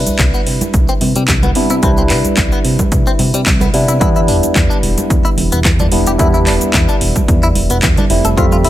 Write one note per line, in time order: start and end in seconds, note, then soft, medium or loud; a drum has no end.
0.00 1.52 G3 medium
0.00 1.53 D4 medium
0.00 1.53 E4 medium
0.00 1.52 B4 medium
0.06 0.17 C2 soft
0.06 closed hi-hat medium
0.06 high conga medium
0.06 shaker medium
0.19 0.32 C2 medium
0.19 0.24 C3 medium
0.19 kick loud
0.19 clap loud
0.19 closed hi-hat medium
0.19 shaker medium
0.34 0.40 B3 medium
0.34 shaker soft
0.47 0.59 C3 medium
0.47 open hi-hat loud
0.61 closed hi-hat soft
0.61 high conga medium
0.61 shaker medium
0.74 0.86 C2 medium
0.74 kick loud
0.74 closed hi-hat medium
0.74 shaker medium
0.89 0.93 C4 medium
0.89 shaker soft
1.01 1.13 C3 loud
1.01 open hi-hat loud
1.01 high conga medium
1.15 1.26 C3 medium
1.15 1.22 G3 medium
1.15 closed hi-hat medium
1.15 shaker medium
1.28 1.51 C2 loud
1.28 1.33 C3 medium
1.28 kick loud
1.28 clap loud
1.28 closed hi-hat medium
1.28 shaker medium
1.42 1.49 B3 medium
1.42 closed hi-hat soft
1.42 high conga medium
1.42 low conga medium
1.42 shaker soft
1.55 1.68 C3 medium
1.55 1.80 G3 medium
1.55 1.80 B3 medium
1.55 1.80 D4 medium
1.55 1.80 E4 medium
1.55 open hi-hat loud
1.70 1.81 C3 medium
1.70 1.74 E4 medium
1.70 closed hi-hat soft
1.70 shaker medium
1.82 2.12 C2 medium
1.82 3.70 G3 medium
1.82 1.90 C4 medium
1.82 3.71 D4 medium
1.82 3.71 E4 loud
1.82 3.71 B4 medium
1.82 kick loud
1.82 closed hi-hat medium
1.82 high conga medium
1.82 shaker soft
1.97 2.02 C4 medium
1.97 shaker soft
2.10 2.22 C3 medium
2.10 2.18 B3 medium
2.10 clap medium
2.10 open hi-hat loud
2.24 2.35 C2 soft
2.24 closed hi-hat medium
2.24 high conga medium
2.24 shaker medium
2.37 2.50 C2 medium
2.37 2.42 C3 medium
2.37 kick loud
2.37 clap loud
2.37 closed hi-hat medium
2.37 shaker medium
2.52 2.59 B3 medium
2.52 shaker soft
2.65 2.77 C3 medium
2.65 open hi-hat loud
2.79 kick medium
2.79 closed hi-hat soft
2.79 high conga medium
2.79 shaker medium
2.92 3.04 C2 medium
2.92 kick loud
2.92 closed hi-hat medium
2.92 shaker soft
3.07 3.11 C4 medium
3.07 shaker soft
3.19 3.32 C3 loud
3.19 open hi-hat loud
3.19 high conga medium
3.33 3.44 C3 medium
3.33 3.40 G3 medium
3.33 closed hi-hat medium
3.33 shaker medium
3.46 3.70 C2 loud
3.46 3.51 C3 medium
3.46 kick loud
3.46 clap loud
3.46 closed hi-hat medium
3.46 shaker soft
3.60 3.68 B3 medium
3.60 closed hi-hat soft
3.60 high conga loud
3.60 low conga medium
3.60 shaker soft
3.73 3.86 C3 medium
3.73 3.98 G3 medium
3.73 3.98 B3 medium
3.73 3.98 D4 medium
3.73 3.98 E4 medium
3.73 open hi-hat loud
3.88 3.99 C3 medium
3.88 3.92 E4 medium
3.88 closed hi-hat medium
3.88 shaker medium
4.00 4.30 E2 medium
4.00 5.88 G3 medium
4.00 5.89 B3 medium
4.00 5.89 D4 medium
4.00 4.08 E4 medium
4.00 5.89 E4 loud
4.00 kick loud
4.00 closed hi-hat medium
4.00 high conga loud
4.00 shaker soft
4.16 4.20 E4 medium
4.16 shaker soft
4.28 4.41 E1 medium
4.28 4.36 D4 medium
4.28 open hi-hat loud
4.43 4.53 E2 soft
4.43 closed hi-hat soft
4.43 high conga medium
4.43 shaker medium
4.55 4.68 E2 medium
4.55 4.60 E3 medium
4.55 kick loud
4.55 clap loud
4.55 closed hi-hat medium
4.55 shaker medium
4.70 4.77 D4 medium
4.70 shaker soft
4.83 4.95 E1 medium
4.83 open hi-hat loud
4.98 closed hi-hat soft
4.98 high conga medium
4.98 shaker medium
5.10 5.23 E2 medium
5.10 kick loud
5.10 closed hi-hat medium
5.10 shaker soft
5.25 5.29 E4 medium
5.25 shaker soft
5.37 5.50 E1 loud
5.37 open hi-hat loud
5.37 high conga medium
5.52 5.63 E1 medium
5.52 5.59 B3 medium
5.52 closed hi-hat soft
5.52 shaker medium
5.65 5.88 E2 loud
5.65 5.69 E3 medium
5.65 kick loud
5.65 clap loud
5.65 closed hi-hat medium
5.65 shaker medium
5.79 5.86 D4 medium
5.79 closed hi-hat soft
5.79 high conga loud
5.79 low conga medium
5.79 shaker soft
5.92 6.04 E1 medium
5.92 6.16 G3 medium
5.92 6.16 B3 medium
5.92 6.17 D4 medium
5.92 6.17 E4 medium
5.92 open hi-hat loud
6.07 6.18 E1 medium
6.07 6.11 G4 medium
6.07 closed hi-hat soft
6.07 shaker medium
6.18 6.48 E2 medium
6.18 8.07 G3 medium
6.18 8.07 B3 medium
6.18 8.07 D4 medium
6.18 6.27 E4 medium
6.18 8.08 E4 loud
6.18 kick loud
6.18 closed hi-hat medium
6.18 high conga medium
6.18 shaker medium
6.34 6.38 E4 medium
6.34 shaker soft
6.47 6.59 E1 medium
6.47 6.54 D4 medium
6.47 clap medium
6.47 open hi-hat loud
6.61 6.72 E2 soft
6.61 closed hi-hat soft
6.61 high conga medium
6.61 shaker medium
6.74 6.86 E2 loud
6.74 6.78 E3 medium
6.74 kick loud
6.74 clap loud
6.74 closed hi-hat medium
6.74 shaker medium
6.89 6.95 D4 medium
6.89 shaker soft
7.01 7.13 E1 medium
7.01 open hi-hat loud
7.16 kick medium
7.16 closed hi-hat soft
7.16 high conga medium
7.16 shaker medium
7.28 7.52 E2 medium
7.28 kick loud
7.28 closed hi-hat medium
7.28 shaker medium
7.43 7.47 E4 medium
7.43 closed hi-hat soft
7.43 shaker soft
7.55 7.68 E1 medium
7.55 open hi-hat loud
7.55 high conga medium
7.70 7.81 E1 medium
7.70 7.77 B3 medium
7.70 closed hi-hat soft
7.70 shaker medium
7.82 7.95 E2 medium
7.82 7.87 E3 medium
7.82 kick loud
7.82 clap loud
7.82 closed hi-hat medium
7.82 shaker medium
7.96 8.04 D4 medium
7.96 closed hi-hat soft
7.96 high conga medium
7.96 low conga medium
7.96 shaker soft
8.10 8.22 F1 loud
8.10 8.34 G3 medium
8.10 8.34 A3 medium
8.10 8.35 C4 medium
8.10 8.35 E4 medium
8.10 open hi-hat loud
8.24 8.35 F1 loud
8.24 8.29 A4 medium
8.24 closed hi-hat soft
8.24 shaker medium
8.37 8.66 F2 loud
8.37 8.70 G3 medium
8.37 8.70 A3 medium
8.37 8.70 C4 medium
8.37 8.45 F4 medium
8.37 8.70 E5 medium
8.37 kick loud
8.37 closed hi-hat medium
8.37 high conga medium
8.37 shaker medium
8.52 8.56 F4 medium
8.52 shaker soft
8.64 8.70 F1 medium
8.64 8.70 E4 medium
8.64 open hi-hat loud